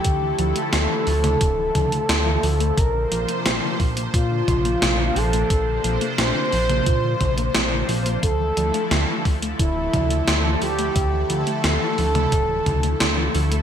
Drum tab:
HH |x-xxx-oxx-xxx-ox|x-xxx-oxx-xxx-ox|x-xxx-oxx-xxx-ox|x-xxx-oxx-xxx-ox|
SD |----o-------o---|----o-------o---|----o-------o---|----o-------o---|
T2 |-------o--o-----|----------o-----|-------o--o-----|----------o-----|
BD |o-------o-o-----|o-----o-o-o-----|o-------o-o-----|o-----o-o-o-----|

HH |x-xxx-oxx-xxx-ox|
SD |----o-------o---|
T2 |-------o--o-----|
BD |o-------o-o-----|